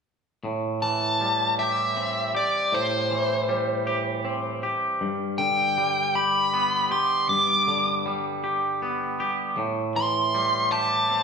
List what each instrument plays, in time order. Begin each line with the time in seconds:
0.44 clean electric guitar A2
0.82 clean electric guitar E3, lead electric guitar A5
1.21 clean electric guitar G3
1.59 clean electric guitar G4, lead electric guitar E5
1.96 clean electric guitar C4
2.35 clean electric guitar G4, lead electric guitar D5
2.72 clean electric guitar A2, lead electric guitar C5
3.11 clean electric guitar E3
3.49 clean electric guitar G3
3.87 clean electric guitar G4
4.25 clean electric guitar C4
4.63 clean electric guitar G4
5.01 clean electric guitar G2
5.38 clean electric guitar D3, lead electric guitar G5
5.78 clean electric guitar G3
6.15 clean electric guitar G4, lead electric guitar B5
6.53 clean electric guitar B3
6.91 clean electric guitar G4, lead electric guitar C6
7.29 clean electric guitar G2, lead electric guitar D6
7.67 clean electric guitar D3
8.06 clean electric guitar G3
8.44 clean electric guitar G4
8.82 clean electric guitar B3
9.20 clean electric guitar G4
9.57 clean electric guitar A2
9.96 clean electric guitar E3, lead electric guitar C6
10.34 clean electric guitar G3
10.72 clean electric guitar G4, lead electric guitar A5
11.10 clean electric guitar C4